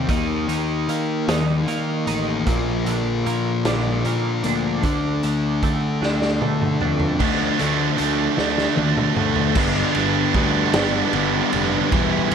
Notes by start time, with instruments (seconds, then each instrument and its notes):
0.08 picked electric bass D#2, distorted electric guitar D#3 A#3 D#4, clean electric guitar D#3, kick, closed hi-hat
0.48 picked electric bass D#2, clean electric guitar D#3, closed hi-hat
0.88 picked electric bass D#3, clean electric guitar A#3, closed hi-hat
1.28 picked electric bass D#2, clean electric guitar D#3, snare, closed hi-hat
1.67 picked electric bass D#3, clean electric guitar A#3, closed hi-hat
2.07 picked electric bass A1, distorted electric guitar D#3 A#3 D#4, clean electric guitar D#4, closed hi-hat
2.46 picked electric bass A#1, distorted electric guitar A#2 F3 A#3, clean electric guitar A#2, kick, closed hi-hat
2.86 picked electric bass A#1, clean electric guitar D3, closed hi-hat
3.26 picked electric bass A#2, clean electric guitar A#3, closed hi-hat
3.65 picked electric bass A#1, clean electric guitar D3, snare, closed hi-hat
4.05 picked electric bass A#2, clean electric guitar A#3, closed hi-hat
4.44 picked electric bass D2, distorted electric guitar A#2 F3 A#3, clean electric guitar D4, closed hi-hat
4.83 picked electric bass D2, distorted electric guitar D3 A3 D4, clean electric guitar D3, kick, closed hi-hat
5.23 picked electric bass D2, clean electric guitar D3, closed hi-hat
5.63 picked electric bass D3, clean electric guitar A3, kick, closed hi-hat
6.02 picked electric bass D2, clean electric guitar D3, snare
6.22 snare
6.41 picked electric bass D3, clean electric guitar A3, mid tom
6.62 mid tom
6.81 picked electric bass F2, distorted electric guitar D3 A3 D4, clean electric guitar D4, floor tom
7.00 floor tom
7.20 picked electric bass D2, distorted electric guitar D3 F3 A3 D4, kick, crash
7.59 picked electric bass D2, distorted electric guitar D3 F3 A3 D4, closed hi-hat
7.97 picked electric bass D2, distorted electric guitar D3 F3 A3 D4, closed hi-hat
8.37 picked electric bass D2, distorted electric guitar D3 F3 A3 D4, snare
8.58 snare
8.76 picked electric bass D2, distorted electric guitar D3 F3 A3 D4, high tom
8.97 mid tom
9.15 picked electric bass D2, distorted electric guitar D3 F3 A3 D4, mid tom
9.36 floor tom
9.55 picked electric bass G1, distorted electric guitar G2 D3 G3 B3 D4, kick, crash
9.95 picked electric bass G1, distorted electric guitar B3 D4, ride
9.99 distorted electric guitar G3
10.34 picked electric bass D2, distorted electric guitar D3 G3 B3 D4, kick, ride
10.74 picked electric bass G1, distorted electric guitar G2 D3 G3 B3 D4, snare, ride
11.13 picked electric bass G1, distorted electric guitar D3 G3 B3 D4, ride
11.53 picked electric bass F1, distorted electric guitar G3 B3 D4, ride
11.91 picked electric bass E1, distorted electric guitar E3 G3 B3 E4, kick, ride
12.31 picked electric bass E1, distorted electric guitar E4, ride